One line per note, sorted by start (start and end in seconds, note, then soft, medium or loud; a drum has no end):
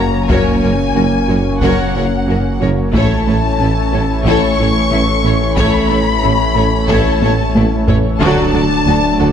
0.00 0.10 F#1 soft
0.00 2.95 F#1 medium
0.00 2.90 F#3 medium
0.00 2.90 A#3 medium
0.00 2.90 C#4 medium
0.00 0.16 F#4 medium
0.00 2.90 C#5 medium
0.00 0.29 A#5 medium
0.29 0.42 F#1 medium
0.29 0.37 F#1 medium
0.29 0.38 F#2 medium
0.29 0.49 F#3 medium
0.29 0.60 C#4 medium
0.29 0.60 F#4 medium
0.29 0.60 A#4 medium
0.29 0.60 C#5 medium
0.29 1.61 G#5 medium
0.29 taiko loud
0.62 0.71 F#1 soft
0.62 0.76 F#1 soft
0.62 0.72 F#2 soft
0.62 0.82 A#3 medium
0.62 0.70 C#4 soft
0.62 0.70 F#4 soft
0.62 0.70 A#4 medium
0.62 0.70 C#5 soft
0.95 1.03 F#1 medium
0.95 1.09 F#1 medium
0.95 1.04 F#2 soft
0.95 1.15 A#3 medium
0.95 1.03 C#4 soft
0.95 1.03 F#4 soft
0.95 1.03 A#4 soft
1.28 1.42 F#1 medium
1.28 1.37 F#1 soft
1.28 1.37 F#2 medium
1.28 1.36 C#4 soft
1.28 1.48 F#4 medium
1.28 1.36 F#4 soft
1.28 1.38 A#4 soft
1.28 1.37 C#5 soft
1.61 1.69 F#1 medium
1.61 1.75 F#1 medium
1.61 1.70 F#2 medium
1.61 1.81 F#3 medium
1.61 1.92 C#4 medium
1.61 1.92 F#4 medium
1.61 1.93 A#4 medium
1.61 1.93 C#5 medium
1.61 2.58 F#5 medium
1.61 taiko medium
1.94 2.03 F#1 soft
1.94 2.08 F#1 soft
1.94 2.03 F#2 medium
1.94 2.14 A#3 medium
1.94 2.03 C#4 medium
1.94 2.03 F#4 medium
1.94 2.04 A#4 medium
1.94 2.04 C#5 medium
2.27 2.36 F#1 soft
2.27 2.41 F#1 soft
2.27 2.36 F#2 soft
2.27 2.47 A#3 medium
2.27 2.35 C#4 medium
2.27 2.35 F#4 medium
2.27 2.37 F#4 soft
2.27 2.37 A#4 medium
2.60 2.68 F#1 medium
2.60 2.74 F#1 soft
2.60 2.69 F#2 soft
2.60 2.68 C#4 medium
2.60 2.68 F#4 soft
2.60 2.80 F#4 medium
2.60 2.70 A#4 medium
2.60 2.70 C#5 medium
2.92 3.02 A1 medium
2.92 8.22 A1 medium
2.92 3.07 A1 medium
2.92 3.02 A2 medium
2.92 8.21 E3 medium
2.92 8.20 A3 medium
2.92 3.24 A3 medium
2.92 8.17 A3 medium
2.92 3.13 A3 medium
2.92 8.17 C#4 medium
2.92 3.24 E4 medium
2.92 8.21 E4 medium
2.92 3.25 A4 medium
2.92 8.17 C#5 medium
2.92 3.25 C#5 medium
2.92 4.21 A5 medium
2.92 taiko medium
3.26 3.35 A1 medium
3.26 3.40 A1 medium
3.26 3.34 A2 medium
3.26 3.34 A3 soft
3.26 3.46 C#4 medium
3.26 3.34 E4 soft
3.26 3.36 A4 soft
3.26 3.37 C#5 soft
3.59 3.73 A1 medium
3.59 3.67 A1 medium
3.59 3.68 A2 soft
3.59 3.67 A3 soft
3.59 3.80 C#4 medium
3.59 3.67 E4 soft
3.59 3.70 E4 soft
3.59 3.70 A4 soft
3.91 4.00 A1 soft
3.91 4.06 A1 medium
3.91 4.00 A2 medium
3.91 3.99 A3 medium
3.91 4.00 E4 soft
3.91 4.12 A4 medium
3.91 4.02 A4 soft
3.91 4.01 C#5 soft
4.24 4.33 A1 medium
4.24 4.38 A1 medium
4.24 4.33 A2 medium
4.24 4.56 A3 medium
4.24 4.46 A3 medium
4.24 4.55 E4 medium
4.24 4.57 A4 medium
4.24 4.57 C#5 medium
4.24 5.57 C#6 medium
4.24 taiko medium
4.58 4.71 A1 medium
4.58 4.67 A1 medium
4.58 4.66 A2 medium
4.58 4.66 A3 medium
4.58 4.78 C#4 medium
4.58 4.66 E4 medium
4.58 4.68 A4 medium
4.58 4.68 C#5 medium
4.90 4.99 A1 soft
4.90 5.05 A1 medium
4.90 5.00 A2 medium
4.90 4.98 A3 medium
4.90 5.11 C#4 medium
4.90 4.98 E4 medium
4.90 5.00 E4 medium
4.90 5.00 A4 medium
5.24 5.32 A1 medium
5.24 5.37 A1 medium
5.24 5.32 A2 medium
5.24 5.32 A3 medium
5.24 5.32 E4 medium
5.24 5.44 A4 medium
5.24 5.34 A4 medium
5.24 5.34 C#5 medium
5.57 5.70 A1 medium
5.57 5.65 A1 medium
5.57 5.65 A2 medium
5.57 5.88 A3 medium
5.57 5.78 A3 medium
5.57 5.88 E4 medium
5.57 5.88 A4 medium
5.57 5.88 C#5 medium
5.57 6.86 B5 loud
5.57 taiko medium
5.89 5.98 A1 medium
5.89 6.04 A1 medium
5.89 5.98 A2 medium
5.89 5.98 A3 medium
5.89 6.10 C#4 medium
5.89 5.98 E4 medium
5.89 5.98 A4 soft
5.89 5.97 C#5 soft
6.22 6.36 A1 medium
6.22 6.31 A1 medium
6.22 6.31 A2 medium
6.22 6.31 A3 medium
6.22 6.43 C#4 medium
6.22 6.31 E4 medium
6.22 6.30 A4 medium
6.55 6.64 A1 medium
6.55 6.69 A1 medium
6.55 6.64 A2 medium
6.55 6.64 A3 medium
6.55 6.65 E4 medium
6.55 6.63 A4 medium
6.55 6.76 A4 medium
6.55 6.64 C#5 medium
6.89 7.02 A1 medium
6.89 6.97 A1 medium
6.89 6.97 A2 medium
6.89 7.20 A3 medium
6.89 7.09 A3 medium
6.89 7.20 E4 medium
6.89 7.20 A4 medium
6.89 7.20 C#5 medium
6.89 7.88 A5 medium
6.89 taiko medium
7.22 7.35 A1 medium
7.22 7.30 A1 medium
7.22 7.31 A2 medium
7.22 7.31 A3 medium
7.22 7.43 C#4 medium
7.22 7.31 E4 medium
7.22 7.32 A4 medium
7.22 7.31 C#5 medium
7.22 taiko high medium
7.55 7.68 A1 medium
7.55 7.63 A1 medium
7.55 7.64 A2 medium
7.55 7.64 A3 medium
7.55 7.75 C#4 medium
7.55 7.64 E4 medium
7.55 7.64 A4 medium
7.55 taiko high medium
7.87 8.01 A1 medium
7.87 7.96 A1 medium
7.87 7.96 A2 medium
7.87 7.96 A3 medium
7.87 7.96 E4 medium
7.87 7.96 A4 medium
7.87 8.08 A4 medium
7.87 7.96 C#5 medium
7.87 taiko low loud
8.20 9.32 D1 medium
8.20 8.28 D2 medium
8.20 8.34 D2 medium
8.20 8.29 D2 medium
8.20 8.41 D3 medium
8.20 8.52 F#3 loud
8.20 9.32 F#3 medium
8.20 9.32 A3 medium
8.20 9.32 D4 medium
8.20 8.52 F#4 medium
8.20 8.52 A4 medium
8.20 8.52 D5 medium
8.20 9.32 D5 medium
8.20 9.32 A5 loud
8.20 taiko loud
8.53 8.67 D2 medium
8.53 8.62 D2 medium
8.53 8.62 F#3 medium
8.53 8.74 F#3 medium
8.53 8.62 F#4 medium
8.53 8.63 A4 medium
8.53 8.63 D5 medium
8.86 8.94 D2 medium
8.86 9.00 D2 medium
8.86 8.95 D2 medium
8.86 9.07 F#3 medium
8.86 8.95 F#3 medium
8.86 8.95 F#4 medium
8.86 8.96 F#4 medium
8.86 8.96 A4 medium
9.19 9.32 D2 medium
9.19 9.27 D2 medium
9.19 9.28 D2 medium
9.19 9.27 F#3 medium
9.19 9.32 D4 medium
9.19 9.27 F#4 medium
9.19 9.28 A4 medium
9.19 9.28 D5 medium